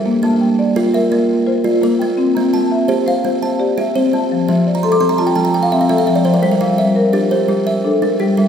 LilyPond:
<<
  \new Staff \with { instrumentName = "Kalimba" } { \time 12/8 \key g \dorian \tempo 4. = 113 << { g'8 r4. bes'8 e''4. r4 bes'4~ | bes'8 r8 a''4 c''8 f''4 a''4. c''4~ | c''8 r8. bes''16 c'''16 d'''16 c'''16 bes''16 a''16 g''16 a''16 bes''16 g''16 f''16 e''16 f''16 e''16 f''16 e''16 d''16 c''16 bes'16 | c''16 bes'8 r16 e''4 g'8 c''4 e''4. g'4 | } \\ { g8 bes4 r8 f'4 bes4 r8 f'4 bes8~ | bes8 c'4 r8 g'4 c'4 r8 g'4 c'8~ | c'8 f4 r8 c'4 f4 r8 c'4 f8~ | f8 g4 r8 d'4 g4 r8 d'4 g8 | } >> }
  \new Staff \with { instrumentName = "Marimba" } { \time 12/8 \key g \dorian << { e''8 a''8 g''4. r8 bes'4 c''8 d''4 g''8~ | g''8 bes''8 a''4. r8 c''4 d''8 e''4 a''8~ | a''8 e''8 d''4. r8 f'4. a'4 d''8~ | d''8 f''8 e''4. r8 g'4 a'8 bes'4 e''8 | } \\ { bes4 r8 d''4 bes'4 r8 f'4 bes4 | c'4 r8 e''4 c''4 r8 g'4 c'4 | f4 r8 a'4 f'4 r8 c'4 f4 | g4 r8 bes'4 g'4 r8 d'4 g4 | } >> }
>>